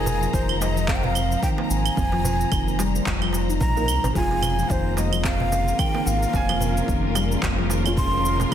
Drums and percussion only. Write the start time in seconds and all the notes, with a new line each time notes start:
0.06 darbuka ka, darbuka dum, cabasa
0.23 cabasa
0.33 kick, cabasa
0.49 claves
0.62 darbuka tek, cabasa
0.77 cabasa
0.88 kick, clap, cabasa
1.04 darbuka dum
1.15 darbuka ka, cabasa, claves
1.32 cabasa
1.43 kick, cabasa
1.58 darbuka tek
1.71 cabasa
1.86 cabasa, claves
1.97 kick, darbuka ka, cabasa
2.12 darbuka tek
2.25 darbuka ka, darbuka dum, cabasa
2.41 cabasa
2.52 kick, cabasa, claves
2.68 cabasa
2.79 darbuka tek, cabasa
2.95 cabasa
3.06 kick, clap, cabasa
3.22 darbuka tek, claves
3.33 darbuka tek, cabasa
3.50 cabasa
3.60 kick, darbuka dum, cabasa
3.77 cabasa
3.88 cabasa, claves
4.04 darbuka tek, darbuka dum, cabasa
4.15 kick, darbuka ka, cabasa
4.31 darbuka tek
4.43 darbuka ka, darbuka dum, cabasa, claves
4.59 cabasa
4.70 kick, cabasa
4.97 darbuka tek, cabasa
5.13 cabasa, claves
5.24 kick, clap, cabasa
5.40 darbuka dum
5.52 darbuka ka, cabasa
5.68 cabasa
5.79 kick, cabasa, claves
5.95 darbuka tek
6.07 cabasa
6.23 cabasa
6.33 kick, darbuka ka, cabasa
6.49 darbuka tek, claves
6.60 darbuka ka, darbuka dum, cabasa
6.77 cabasa
6.88 kick, cabasa
7.15 darbuka tek, cabasa, claves
7.32 cabasa
7.43 kick, clap, cabasa
7.58 darbuka tek
7.70 darbuka tek, cabasa
7.86 cabasa, claves
7.97 kick, darbuka dum, cabasa
8.25 cabasa
8.39 darbuka tek, darbuka dum, cabasa